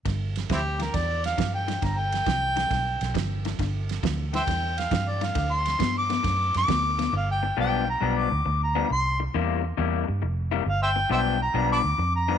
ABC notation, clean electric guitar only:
X:1
M:4/4
L:1/8
Q:"Swing" 1/4=136
K:Gmix
V:1 name="Clean electric guitar" clef=bass
[G,,D,]2 [G,,E,] [G,,E,] [G,,D,]2 [G,,E,] [G,,E,] | [G,,D,]2 [G,,E,] [G,,E,] [G,,D,]2 [G,,E,] [G,,E,] | [G,,D,]2 [G,,E,] [G,,E,] [G,,D,]2 [G,,E,] [G,,E,] | [D,A,]2 [D,B,] [D,B,] [D,A,]2 [D,B,] [D,B,] |
z2 [G,,F,B,D] z [G,,F,B,D] z2 [G,,F,B,D] | z2 [C,G,_B,E] z [C,G,B,E] z2 [C,G,B,E] | z2 [G,,F,B,D] z [G,,F,B,D] z2 [G,,F,B,D] |]